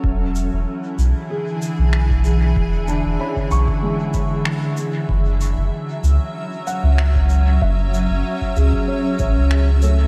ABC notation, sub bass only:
X:1
M:4/4
L:1/16
Q:"Swing 16ths" 1/4=95
K:Emix
V:1 name="Sub bass" clef=bass
E,,,3 E,,, z2 B,,, z4 B,,,4- B,,, | E,,,3 E,,, z2 B,,, z8 z | F,,,3 F,,, z2 C,, z4 C,,4- C,, | F,,,3 F,,, z2 C,, z3 A,,, C,,4- C,, |]